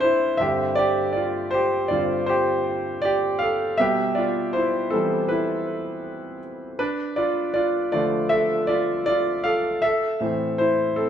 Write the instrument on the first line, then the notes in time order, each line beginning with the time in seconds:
grand piano
Already playing: A2 E3 C4 D4 E4 A4 B4
0.00 C5
0.04 E4
0.37 G2 D3 C4 G4 E5
0.75 G4 D5
1.12 F4 D5
1.51 G4 C5
1.88 G2 D3 C4 F4 D5
2.26 G4 C5
3.02 G4 D5
3.39 A4 F5
3.78 B2 G3 G4 B4 E5
4.15 F4 D5
4.53 E4 C5
4.90 E3 G3 B3 C4 A4
5.29 E4 B4
6.79 D4 B4
7.16 F4 D5
7.54 F4 D5
7.92 D3 F3 A3 F4 D5
8.29 A4 E5
8.67 F4 D5
9.06 F4 D5
9.44 A4 F5
9.82 A4 E5
10.20 A2 E3 C4
10.58 E4 C5
10.96 C4 A4